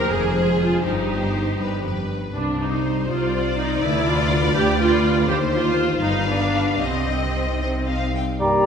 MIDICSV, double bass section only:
0, 0, Header, 1, 2, 480
1, 0, Start_track
1, 0, Key_signature, -3, "minor"
1, 0, Tempo, 496689
1, 832, Time_signature, 6, 3, 24, 8
1, 3239, Tempo, 484262
1, 5639, Tempo, 526316
1, 8272, End_track
2, 0, Start_track
2, 0, Title_t, "Double bass section"
2, 0, Program_c, 0, 48
2, 112, Note_on_c, 0, 29, 49
2, 745, Note_off_c, 0, 29, 0
2, 824, Note_on_c, 0, 31, 41
2, 1465, Note_off_c, 0, 31, 0
2, 1548, Note_on_c, 0, 31, 38
2, 2195, Note_off_c, 0, 31, 0
2, 2279, Note_on_c, 0, 36, 39
2, 2913, Note_off_c, 0, 36, 0
2, 2995, Note_on_c, 0, 36, 45
2, 3634, Note_off_c, 0, 36, 0
2, 3716, Note_on_c, 0, 38, 53
2, 4349, Note_off_c, 0, 38, 0
2, 4429, Note_on_c, 0, 38, 56
2, 5063, Note_off_c, 0, 38, 0
2, 5150, Note_on_c, 0, 39, 48
2, 5829, Note_off_c, 0, 39, 0
2, 5867, Note_on_c, 0, 31, 47
2, 6578, Note_on_c, 0, 36, 36
2, 6580, Note_off_c, 0, 31, 0
2, 7817, Note_off_c, 0, 36, 0
2, 8272, End_track
0, 0, End_of_file